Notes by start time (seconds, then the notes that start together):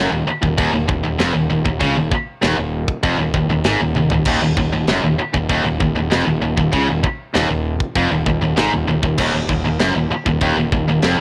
Already playing: F#1 F#2
0.12 D#1 D#2
0.27 muted distorted electric guitar stroke, muted fingered electric bass stroke
0.43 D#1 D#2, kick
0.58 D#1 D#2, kick, china
0.73 D#1 D#2
0.89 D#1 D#2, kick
1.04 D#1 D#2
1.19 F1 F2, snare, china
1.34 D#1 D#2
1.50 D#1 D#2
1.64 D#1 D#2, kick
1.80 C#2 C#3, kick, china
1.96 D#1 D#2
2.11 muted distorted electric guitar stroke, muted fingered electric bass stroke, kick
2.42 D#1 D#2, snare, china
2.57 D#1 D#2
2.88 kick
3.03 F1 F2, kick, china
3.19 D#1 D#2
3.34 D#1 D#2, kick
3.49 D#1 D#2
3.64 G#1 G#2, snare, china
3.81 D#1 D#2
3.95 D#1 D#2, high tom
4.10 D#1 D#2, floor tom
4.25 D#1 D#2, kick, crash, china
4.42 D#1 D#2
4.57 D#1 D#2, kick
4.72 D#1 D#2
4.87 F#1 F#2, snare, china
5.04 D#1 D#2
5.19 muted distorted electric guitar stroke, muted fingered electric bass stroke
5.34 D#1 D#2, kick
5.49 D#1 D#2, kick, china
5.64 D#1 D#2
5.80 D#1 D#2, kick
5.95 D#1 D#2
6.10 F1 F2, snare, china
6.26 D#1 D#2
6.41 D#1 D#2
6.57 D#1 D#2, kick
6.72 C#2 C#3, kick, china
6.88 D#1 D#2
7.04 muted distorted electric guitar stroke, muted fingered electric bass stroke, kick
7.34 D#1 D#2, snare, china
7.50 D#1 D#2
7.80 kick
7.95 F1 F2, kick, china
8.11 D#1 D#2
8.26 D#1 D#2, kick
8.41 D#1 D#2
8.57 G#1 G#2, snare, china
8.72 D#1 D#2
8.88 D#1 D#2
9.03 D#1 D#2, kick
9.18 D#1 D#2, kick, china, crash
9.34 D#1 D#2
9.49 D#1 D#2, kick
9.64 D#1 D#2
9.79 F#1 F#2, snare, china
9.95 D#1 D#2
10.11 muted distorted electric guitar stroke, muted fingered electric bass stroke
10.26 D#1 D#2, kick
10.41 D#1 D#2, kick, china
10.57 D#1 D#2
10.72 D#1 D#2, kick
10.88 D#1 D#2
11.02 F1 F2, snare, china